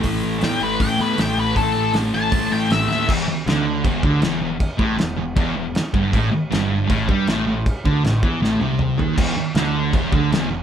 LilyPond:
<<
  \new Staff \with { instrumentName = "Lead electric guitar" } { \time 4/4 \key a \major \tempo 4 = 158 r4 g''8 b'8 g''8 b'8 g''8 b'8 | a'4 r8 a''4 g''8 e''8 e''8 | r1 | r1 |
r1 | r1 | r1 | }
  \new Staff \with { instrumentName = "Distorted electric guitar" } { \clef bass \time 4/4 \key a \major <a, e a>4 <a, e a>8 <e a>8 <a, e a>8 <e a>8 <a, e a>4 | <a, e a>4 <a, e a>8 <e a>8 <a, e a>8 <e a>8 <a, e a>4 | e,8 r8 d4 e,8 d8 e,8 e,8 | r8 a,8 e,8 e,8 e,8 e,8 r8 g,8 |
a,8 r8 g,4 a,8 g8 a,8 a,8 | r8 d8 a,8 e8 a,8 c4 dis8 | e,8 r8 d4 e,8 d8 e,8 e,8 | }
  \new Staff \with { instrumentName = "Picked electric bass" } { \clef bass \time 4/4 \key a \major a,,8 a,,8 e,8 a,,8 a,,8 e,8 a,,8 a,,8 | a,,8 a,,8 a,,8 a,,8 a,,8 a,,8 a,,8 dis,8 | e,,8 r8 d,4 e,,8 d,8 e,,8 e,,8 | r8 a,,8 e,,8 e,,8 e,,8 e,,8 r8 g,,8 |
a,,8 r8 g,,4 a,,8 g,8 a,,8 a,,8 | r8 d,8 a,,8 e,8 a,,8 c,4 dis,8 | e,,8 r8 d,4 e,,8 d,8 e,,8 e,,8 | }
  \new DrumStaff \with { instrumentName = "Drums" } \drummode { \time 4/4 <hho bd>4 <hho sn>4 <hho bd>4 <hho sn>4 | <hho bd>4 <hho sn>4 <hho bd>4 <hho sn>8 sn8 | <cymc bd>4 <cymc sn>4 <cymc bd>8 bd8 <cymc sn>4 | <cymc bd>8 bd8 <cymc sn>4 <cymc bd>4 <cymc sn>8 bd8 |
<cymc bd>4 <cymc sn>4 <cymc bd>8 bd8 <cymc sn>4 | <cymc bd>8 bd8 <cymc sn>8 bd8 sn8 tommh8 toml8 tomfh8 | <cymc bd>4 <cymc sn>4 <cymc bd>8 bd8 <cymc sn>4 | }
>>